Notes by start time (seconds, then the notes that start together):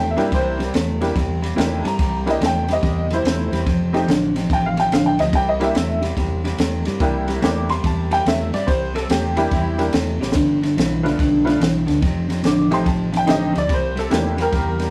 Already playing: E2 C3 A3
0.11 E5
0.16 G2 C3 G3 A#3 D4 E4 G4, snare, ride
0.32 C2 C3 G3 C5, kick, snare, ride
0.59 C3 G3, snare, ride
0.74 E2 C3 A3, snare, ride
1.01 C3 G3 A#3 D4 E4 G4, snare, ride
1.15 E2 C3 G3, kick, snare, ride
1.42 C3 G3, snare, ride
1.56 E2 C3 A3 A#3 D4 E4 G4, snare, ride
1.83 G2 C3 G3 A5, snare, ride
1.87 A#5
1.99 C2 C3 G3, kick, snare, ride
2.26 C3 G3 A#3 D4 E4 G4, snare, ride
2.30 D#5
2.41 E2 C3 A3, snare, ride
2.46 G5
2.68 C3 G3, snare, ride
2.72 D#5
2.83 E2 C3 G3, kick, snare, ride
3.10 C3 G3 E4 C5, snare, ride
3.24 E2 C3 A3, snare, ride
3.52 E2 C3 G3, snare, ride
3.66 F1 F2 C3, kick, snare, ride
3.93 F2 C3 A3 C4 D#4 G4, snare, ride
4.07 A1 F2 D3, snare, ride
4.36 F2 C3, snare, ride
4.50 A1 F2 C3 G5, kick, snare, ride
4.66 F5
4.77 F2 C3 G5, snare, ride
4.90 A1 F2 D3 F5, snare, ride
5.06 G5
5.19 D2 F2 C3 D#5, snare, ride
5.33 C2 C3 G3 G5, kick, snare, ride
5.49 D#5
5.60 C3 G3 A#3 D4 E4 G4 E5, snare, ride
5.75 E2 C3 A3, snare, ride
6.01 C3 G3, snare, ride
6.16 E2 C3 G3, kick, snare, ride
6.44 C3 G3, snare, ride
6.58 E2 C3 A3, snare, ride
6.85 G2 C3 G3, snare, ride
7.00 C2 C3 G3 A#3 D4 E4 G4, kick, snare, ride
7.28 C3 G3, snare, ride
7.42 E2 C3 A3 A#3 D4 E4 G4 D6, snare, ride
7.69 C3 G3 C6, snare, ride
7.84 E2 C3 G3 A5, kick, snare, ride
8.11 C3 G3 G5, snare, ride
8.25 E2 C3 A3 E5, snare, ride
8.53 G2 C3 G3 D5, snare, ride
8.67 C2 C3 G3 C5, kick, snare, ride
8.94 C3 G3 A4, snare, ride
9.09 E2 C3 A3 G4, snare, ride
9.37 C3 G3 A#3 D4 E4 G4, snare, ride
9.52 E2 C3 G3, kick, snare, ride
9.78 C3 G3 A#3 D4 E4 G4, snare, ride
9.93 E2 C3 A3, snare, ride
10.20 A1 C3 G3, snare
10.32 G1 G2 D3, kick, snare, ride
10.37 snare
10.62 G2 D3, snare, ride
10.77 B1 G2 E3, snare, ride
11.03 G2 D3 A3 B3 D4 F4, ride
11.07 snare
11.19 B1 G2 D3, kick, snare, ride
11.45 G2 D3 A3 B3 D4 F4, snare, ride
11.60 B1 G2 E3, snare, ride
11.86 D2 G2 D3, snare, ride
12.01 F1 F2 C3, kick, snare, ride
12.29 F2 C3, snare, ride
12.43 A1 F2 D3 D6, snare, ride
12.71 F2 C3 A3 C4 D#4 G4 C6, snare, ride
12.85 A1 F2 C3 A5, kick, snare, ride
13.12 F2 C3, snare, ride
13.17 G5
13.26 A1 F2 D3 A3 C4 D#4 G4 D#5, snare, ride
13.53 D2 F2 C3, ride
13.57 D5, snare
13.69 C2 C3 G3, kick, snare, ride
13.74 C5
13.96 C3 G3 A4, snare, ride
14.10 E2 C3 A3 A#3 D4 E4 G4, snare, ride
14.38 C3 G3 G4, snare, ride
14.42 A#4
14.52 E2 C3 G3, kick, snare, ride
14.80 C3 G3, snare, ride